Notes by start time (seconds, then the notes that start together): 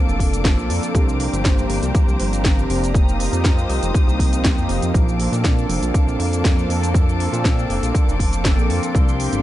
Already playing: F3 A#3 C4 D4 A4 F5 A5 D6
0.07 F1, shaker
0.20 kick, open hi-hat
0.32 F3 A#3 C4 D4 A4, closed hi-hat, shaker
0.45 kick, snare, closed hi-hat, shaker
0.58 A#1, shaker
0.69 F2, open hi-hat
0.83 closed hi-hat, shaker
0.94 C2 F3 A#3 C4 D4 G4 C5 A#5, kick, closed hi-hat, shaker
1.09 shaker
1.20 open hi-hat
1.33 G1, closed hi-hat, shaker
1.45 kick, snare, closed hi-hat, shaker
1.59 shaker
1.70 G1, open hi-hat
1.83 C2, closed hi-hat, shaker
1.95 C2, kick, closed hi-hat, shaker
2.08 C2, shaker
2.20 G1, open hi-hat
2.31 F3 A#3 C4 D4 G4, closed hi-hat, shaker
2.45 kick, snare, closed hi-hat, shaker
2.59 shaker
2.70 F1, open hi-hat
2.84 closed hi-hat, shaker
2.93 F3 A#3 C4 D#4 G4 C5 F5 D#6, kick, closed hi-hat, shaker
3.09 shaker
3.20 open hi-hat
3.33 F2, closed hi-hat, shaker
3.44 kick, snare, closed hi-hat, shaker
3.58 shaker
3.69 C2, open hi-hat
3.83 F1, closed hi-hat, shaker
3.94 kick, closed hi-hat, shaker
4.07 C2, shaker
4.19 kick, open hi-hat
4.32 F3 A#3 C4 D#4 G4, closed hi-hat, shaker
4.44 kick, snare, closed hi-hat, shaker
4.58 F2, shaker
4.69 F1, open hi-hat
4.82 F2, closed hi-hat, shaker
4.94 A#1 F3 A#3 C4 D4 A4 A5 D6, kick, closed hi-hat, shaker
5.08 shaker
5.20 open hi-hat
5.32 A#2, closed hi-hat, shaker
5.44 kick, snare, closed hi-hat, shaker
5.58 shaker
5.69 F1, open hi-hat
5.82 A#1, closed hi-hat, shaker
5.94 A#1, kick, closed hi-hat, shaker
6.07 A#1, shaker
6.19 F2, open hi-hat
6.31 F3 A#3 C4 D4 A4, closed hi-hat, shaker
6.44 kick, snare, closed hi-hat, shaker
6.59 shaker
6.69 F2, open hi-hat
6.83 closed hi-hat, shaker
6.93 F3 A#3 C4 D4 A4, kick, closed hi-hat, shaker
7.09 shaker
7.20 open hi-hat
7.33 A#2, closed hi-hat, shaker
7.45 kick, snare, closed hi-hat, shaker
7.59 shaker
7.70 F1, open hi-hat
7.83 A#1, closed hi-hat, shaker
7.95 kick, closed hi-hat, shaker
8.08 F1, shaker
8.20 kick, open hi-hat
8.32 F3 A#3 C4 D4 A4, closed hi-hat, shaker
8.45 kick, snare, closed hi-hat, shaker
8.58 A#1, shaker
8.69 F2, open hi-hat
8.83 closed hi-hat, shaker
8.94 C2 F3 A#3 C4 D4 G4 C6, kick, closed hi-hat, shaker
9.09 shaker
9.20 open hi-hat
9.33 G1, closed hi-hat, shaker